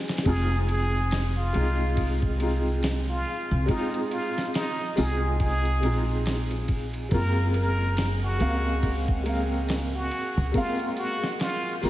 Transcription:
0.00 0.23 G#3 medium
0.00 0.28 A#3 medium
0.00 0.25 C4 medium
0.00 0.28 F4 loud
0.00 0.25 G#4 medium
0.08 snare medium
0.08 ride medium
0.17 snare medium
0.17 ride medium
0.23 1.51 F1 loud
0.23 1.49 G#3 medium
0.23 1.50 C4 medium
0.23 1.51 D#4 medium
0.23 11.90 G#4 medium
0.23 0.65 G#4 loud
0.23 kick loud
0.23 ride medium
0.29 1.52 F4 loud
0.69 1.30 G#4 medium
0.69 ride medium
1.11 snare loud
1.11 ride medium
1.37 2.13 F4 loud
1.53 3.23 C2 medium
1.53 2.36 G#3 medium
1.53 2.36 C4 medium
1.53 2.37 D#4 medium
1.53 2.37 F4 loud
1.53 ride medium
1.97 kick loud
1.97 ride medium
2.22 kick medium
2.38 3.63 G#3 medium
2.38 3.64 C4 medium
2.38 3.65 D#4 medium
2.38 ride medium
2.43 3.66 F4 medium
2.83 snare loud
2.83 ride medium
3.09 3.64 F4 loud
3.51 3.67 C2 loud
3.66 4.92 G#3 medium
3.66 4.93 C4 medium
3.66 4.93 D#4 medium
3.66 4.08 D#4 medium
3.66 kick loud
3.66 ride medium
3.71 4.94 F4 loud
3.94 ride soft
4.11 4.51 F4 medium
4.11 ride medium
4.38 snare medium
4.54 4.94 D#4 medium
4.54 snare loud
4.54 ride medium
4.96 5.83 C2 medium
4.96 5.79 G#3 medium
4.96 5.79 C4 medium
4.96 5.80 D#4 medium
4.96 5.80 F4 loud
4.96 5.37 G#4 medium
4.96 open hi-hat medium
5.40 6.01 G#4 loud
5.40 kick loud
5.40 ride medium
5.65 ride soft
5.80 7.08 A#1 loud
5.80 7.06 G#3 medium
5.80 7.07 C4 medium
5.80 7.08 D#4 medium
5.80 ride medium
5.86 7.09 F4 medium
6.26 snare loud
6.26 ride medium
6.51 ride soft
6.68 kick loud
6.68 ride medium
6.94 ride soft
7.09 8.37 F#1 loud
7.09 8.35 G#3 medium
7.09 8.35 A#3 medium
7.09 8.37 C4 medium
7.09 7.51 A#4 loud
7.09 kick loud
7.09 ride medium
7.14 8.37 F4 loud
7.54 8.15 A#4 medium
7.54 ride medium
7.97 snare loud
7.97 ride medium
8.23 8.99 F#4 loud
8.39 10.08 C#2 medium
8.39 9.22 G#3 medium
8.39 9.22 A#3 medium
8.39 9.23 C4 medium
8.39 9.23 F5 loud
8.39 ride medium
8.83 kick loud
8.83 ride medium
9.08 kick medium
9.23 10.49 G#3 medium
9.23 10.50 A#3 medium
9.23 10.51 C4 medium
9.23 ride medium
9.29 10.52 F5 medium
9.69 snare loud
9.69 ride medium
9.95 10.50 F#4 loud
10.11 ride medium
10.37 10.53 C#2 loud
10.52 11.78 G#3 medium
10.52 11.78 A#3 medium
10.52 11.79 C4 medium
10.52 10.94 F4 medium
10.52 kick loud
10.52 ride medium
10.57 11.80 F5 loud
10.79 ride soft
10.97 11.37 F#4 loud
10.97 ride medium
11.23 snare medium
11.40 11.80 F4 medium
11.40 snare loud
11.40 ride medium
11.81 11.90 C#2 medium
11.81 11.90 G#3 loud
11.81 11.90 A#3 medium
11.81 11.90 C4 medium
11.81 11.90 F4 loud
11.81 11.90 A#4 loud
11.81 open hi-hat medium

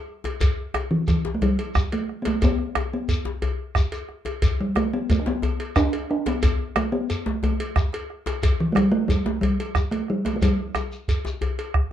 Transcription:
0.24 bombo rim soft
0.24 cowbell medium
0.24 djembe slap soft
0.24 djembe tone medium
0.40 bombo rim soft
0.40 bombo low medium
0.40 cowbell medium
0.40 djembe slap soft
0.40 djembe bass medium
0.40 shekere medium
0.74 bombo rim medium
0.74 cowbell soft
0.74 djembe tone medium
0.91 1.07 E3 medium
1.07 1.36 E3 medium
1.07 bombo rim soft
1.07 bombo low medium
1.07 cowbell soft
1.07 shekere medium
1.25 djembe slap medium
1.25 djembe tone medium
1.34 1.44 A3 medium
1.42 1.75 G3 medium
1.42 cowbell soft
1.42 djembe slap soft
1.42 djembe bass medium
1.59 cowbell soft
1.75 bombo rim medium
1.75 bombo low medium
1.75 djembe tone medium
1.75 shekere medium
1.92 2.20 A3 medium
1.92 bombo rim soft
1.92 cowbell soft
1.92 djembe slap soft
2.09 bombo rim soft
2.22 2.29 B3 medium
2.22 bombo rim soft
2.22 cowbell medium
2.22 djembe slap medium
2.22 djembe tone medium
2.27 2.43 A3 medium
2.42 2.90 B3 medium
2.42 bombo rim soft
2.42 bombo low medium
2.42 cowbell medium
2.42 djembe bass medium
2.42 shekere medium
2.59 bombo rim soft
2.75 bombo rim medium
2.75 cowbell medium
2.75 djembe tone medium
2.94 3.56 B3 medium
3.08 bombo low medium
3.08 cowbell soft
3.08 djembe slap soft
3.08 shekere medium
3.25 bombo rim soft
3.25 djembe slap medium
3.25 djembe tone medium
3.42 bombo rim soft
3.42 cowbell medium
3.42 djembe bass medium
3.75 bombo rim medium
3.75 bombo low medium
3.75 djembe tone medium
3.75 shekere medium
3.92 cowbell medium
3.92 djembe slap soft
3.92 shekere soft
4.09 bombo rim soft
4.09 djembe slap soft
4.25 cowbell soft
4.25 djembe tone medium
4.42 bombo rim soft
4.42 bombo low medium
4.42 cowbell medium
4.42 djembe slap soft
4.42 djembe bass medium
4.42 shekere medium
4.61 4.78 G3 medium
4.76 4.93 A3 medium
4.76 bombo rim medium
4.76 cowbell soft
4.76 djembe tone medium
4.94 5.12 B3 medium
5.10 5.21 A3 medium
5.10 bombo rim soft
5.10 bombo low medium
5.10 cowbell soft
5.10 shekere medium
5.19 5.29 D4 medium
5.26 5.76 B3 loud
5.26 djembe slap medium
5.26 djembe tone medium
5.42 cowbell soft
5.42 djembe slap soft
5.42 djembe bass medium
5.60 cowbell medium
5.76 6.07 D4 medium
5.76 bombo rim medium
5.76 bombo low medium
5.76 djembe tone medium
5.76 shekere medium
5.93 bombo rim soft
5.93 cowbell soft
5.93 djembe slap soft
6.10 6.29 D4 medium
6.10 bombo rim soft
6.26 6.76 B3 medium
6.26 bombo rim soft
6.26 cowbell medium
6.26 djembe slap medium
6.26 djembe tone medium
6.43 bombo rim soft
6.43 bombo low medium
6.43 cowbell medium
6.43 djembe slap soft
6.43 djembe bass medium
6.43 shekere medium
6.76 6.94 A3 medium
6.76 bombo rim loud
6.76 cowbell medium
6.76 djembe tone medium
6.92 7.28 B3 medium
7.10 bombo rim soft
7.10 cowbell medium
7.10 shekere medium
7.26 7.43 A3 medium
7.26 djembe slap medium
7.26 djembe tone medium
7.43 8.06 A3 medium
7.43 cowbell medium
7.43 djembe slap soft
7.43 djembe bass medium
7.60 cowbell medium
7.76 bombo rim medium
7.76 bombo low loud
7.76 djembe tone medium
7.76 shekere medium
7.93 bombo rim soft
7.93 cowbell medium
7.93 djembe slap soft
8.10 bombo rim soft
8.26 bombo rim soft
8.26 cowbell medium
8.26 djembe slap medium
8.26 djembe tone medium
8.43 bombo rim soft
8.43 bombo low medium
8.43 cowbell medium
8.43 djembe slap soft
8.43 djembe bass medium
8.43 shekere medium
8.60 8.74 E3 medium
8.72 8.93 G3 loud
8.72 8.77 A3 medium
8.72 bombo rim medium
8.72 djembe tone medium
8.77 cowbell medium
8.92 9.08 A3 loud
9.08 9.24 G3 medium
9.08 bombo rim soft
9.08 bombo low medium
9.08 cowbell medium
9.08 shekere soft
9.26 9.41 A3 medium
9.26 djembe slap medium
9.26 djembe tone soft
9.41 9.93 G3 medium
9.41 cowbell medium
9.41 djembe slap soft
9.41 djembe bass medium
9.60 cowbell medium
9.75 bombo rim medium
9.75 bombo low medium
9.75 djembe tone medium
9.75 shekere medium
9.91 10.11 A3 medium
9.91 bombo rim soft
9.91 cowbell soft
9.91 djembe slap soft
10.08 10.26 G3 medium
10.08 bombo rim soft
10.25 10.35 A3 medium
10.25 bombo rim soft
10.25 cowbell soft
10.25 djembe slap soft
10.25 djembe tone soft
10.36 10.44 A3 medium
10.41 11.92 G3 medium
10.41 bombo low medium
10.41 cowbell medium
10.41 djembe bass medium
10.41 shekere medium
10.75 bombo rim medium
10.75 cowbell soft
10.75 djembe slap soft
10.75 djembe tone medium
10.75 shekere soft
10.92 djembe slap soft
10.92 shekere soft
11.08 bombo low medium
11.08 cowbell soft
11.08 shekere medium
11.25 bombo rim soft
11.25 djembe slap medium
11.25 djembe tone soft
11.25 shekere soft
11.41 bombo rim soft
11.41 cowbell soft
11.41 djembe bass medium
11.59 cowbell soft
11.74 bombo rim medium
11.74 bombo low medium
11.74 djembe bass soft

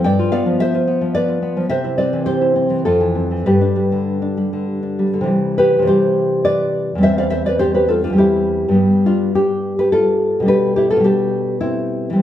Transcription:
0.04 0.46 G2 medium
0.04 0.31 D5 medium
0.04 0.31 G5 loud
0.19 0.73 F4 medium
0.32 0.86 B3 medium
0.32 0.59 D5 medium
0.32 0.59 F5 loud
0.46 1.00 F3 medium
0.60 1.12 C5 medium
0.60 1.13 E5 loud
0.75 1.27 F4 medium
0.87 1.41 B3 medium
1.01 1.56 F3 medium
1.15 1.67 B4 medium
1.15 1.68 D5 loud
1.28 1.71 F4 medium
1.42 1.70 B3 medium
1.57 1.70 F3 medium
1.69 2.81 C3 medium
1.69 1.97 C5 medium
1.69 1.97 E5 loud
1.84 2.40 E4 medium
1.98 2.54 C4 medium
1.98 2.25 B4 medium
1.98 2.25 D5 medium
2.13 2.69 E3 medium
2.26 2.81 G4 medium
2.26 2.82 C5 loud
2.41 2.85 E4 medium
2.56 2.85 C4 medium
2.70 2.85 E3 medium
2.85 3.44 F2 medium
2.85 3.42 F4 medium
2.85 3.43 A4 medium
3.01 3.30 E3 medium
3.15 3.45 C4 soft
3.31 3.46 E3 soft
3.46 5.20 G2 medium
3.46 4.65 G4 medium
3.46 4.64 B4 medium
3.61 4.21 D4 medium
3.76 4.36 G3 medium
3.92 4.52 D3 medium
4.22 4.82 D4 medium
4.37 4.98 G3 medium
4.53 5.12 D3 medium
4.83 5.28 D4 soft
4.99 5.25 G3 soft
5.13 5.28 D3 soft
5.21 5.78 C3 medium
5.21 5.81 E3 medium
5.26 5.84 G3 medium
5.58 5.86 G4 medium
5.58 5.86 B4 medium
5.79 6.95 C3 medium
5.79 6.97 E3 medium
5.85 6.97 G3 medium
5.85 6.42 G4 medium
5.85 6.43 C5 medium
6.45 6.99 B4 medium
6.45 7.01 D5 loud
6.95 8.09 E2 medium
6.95 8.12 G3 medium
7.01 8.12 C4 medium
7.01 7.17 C5 medium
7.01 7.18 E5 loud
7.18 7.31 D5 medium
7.18 7.30 F5 medium
7.30 7.45 C5 medium
7.30 7.46 E5 medium
7.46 7.60 B4 medium
7.46 7.59 D5 medium
7.59 7.74 G4 medium
7.59 7.74 C5 loud
7.74 7.88 G4 medium
7.74 7.90 B4 medium
7.88 8.03 F4 medium
7.88 8.03 A4 medium
8.04 8.16 D4 medium
8.04 8.18 F4 medium
8.10 8.68 E2 medium
8.10 8.70 G3 medium
8.16 8.74 C4 medium
8.16 8.73 E4 medium
8.16 8.75 G4 medium
8.69 10.39 G2 medium
8.69 10.41 G3 medium
8.74 10.43 B3 medium
9.06 9.34 D4 medium
9.06 9.34 F4 medium
9.35 9.76 D4 medium
9.35 9.77 G4 medium
9.79 9.93 G4 medium
9.79 9.92 B4 medium
9.92 10.45 F4 medium
9.92 10.46 A4 loud
10.40 10.95 B2 medium
10.40 10.98 G3 soft
10.46 11.02 D4 soft
10.46 10.75 G4 medium
10.46 10.75 B4 loud
10.76 10.90 E4 medium
10.76 10.90 G4 medium
10.90 11.04 F4 medium
10.90 11.05 A4 medium
10.96 12.10 B2 medium
10.96 12.12 G3 medium
11.04 11.57 D4 medium
11.04 11.58 G4 medium
11.61 12.14 C4 medium
11.61 12.22 E4 medium
12.10 12.22 E3 medium
12.10 12.22 G3 medium
12.15 12.22 C4 soft

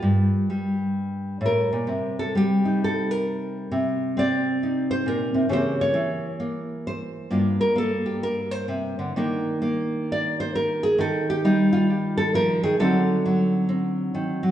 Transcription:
0.00 1.40 G2 medium
0.00 0.49 G3 medium
0.00 1.90 A#3 soft
0.00 0.51 F4 medium
0.50 2.22 G3 medium
1.41 1.72 A2 medium
1.46 2.19 A#4 medium
1.73 1.88 A#2 medium
1.87 3.70 C3 medium
2.19 2.35 A4 medium
2.35 4.16 G3 medium
2.35 2.83 G4 medium
2.65 3.70 D#4 soft
2.84 3.11 A4 medium
3.11 3.56 A#4 medium
3.71 5.33 C3 medium
4.17 5.49 C4 medium
4.17 4.90 D5 medium
4.63 5.50 D#4 soft
4.91 5.06 C5 medium
5.06 5.35 A#2 medium
5.06 5.51 A#4 medium
5.34 5.49 C3 medium
5.49 5.95 C#3 medium
5.49 5.93 E3 soft
5.49 6.39 A#3 soft
5.49 7.32 G4 soft
5.49 5.81 C5 medium
5.81 6.26 C#5 medium
5.94 7.28 E3 medium
6.40 7.31 A#3 soft
6.87 7.60 C5 medium
7.31 9.16 G2 medium
7.31 7.75 A#3 soft
7.31 9.17 D4 soft
7.31 7.77 F4 soft
7.61 7.76 A#4 medium
7.76 9.17 A#3 medium
7.76 8.23 A4 medium
8.06 8.23 G4 soft
8.23 8.51 A#4 medium
8.51 9.00 C5 medium
8.68 8.98 C3 medium
8.99 9.16 D3 medium
9.16 10.97 D#3 medium
9.16 9.61 A#3 soft
9.16 11.01 D4 soft
9.16 10.12 A#4 soft
9.62 10.97 A#3 medium
10.12 10.40 D5 medium
10.40 10.55 C5 medium
10.55 10.85 A#4 medium
10.83 10.99 G#4 medium
10.98 12.62 D#3 medium
10.98 11.29 A4 medium
11.30 11.45 G4 medium
11.44 12.34 G3 medium
11.44 11.72 D#4 medium
11.73 11.89 F4 medium
11.90 12.17 G4 medium
12.17 12.34 A4 loud
12.34 12.64 F3 medium
12.34 12.63 A#4 medium
12.63 12.79 D#3 medium
12.63 12.79 G#4 loud
12.80 14.13 D3 medium
12.80 13.24 F#3 soft
12.80 13.68 C4 medium
12.80 14.51 D#4 medium
12.80 13.53 A4 medium
13.26 14.42 F#3 medium
13.69 14.51 C4 medium
14.15 14.43 D#3 medium
14.43 14.51 F#3 medium

